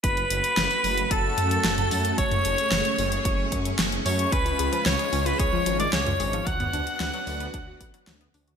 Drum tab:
HH |xxxxxxoxx-xxxxox|xxxxxxoxx-xxxxox|xxxxxxoxx-xxxxox|xxxxxxoxx-xxxxox|
SD |----o-------o---|----o-------o---|----o-------o---|----o-------o---|
T2 |-------------o--|-o--------------|-------------o--|-o--------------|
BD |o-------o-------|o-------o-o-----|o-------o-------|o-------o-o-----|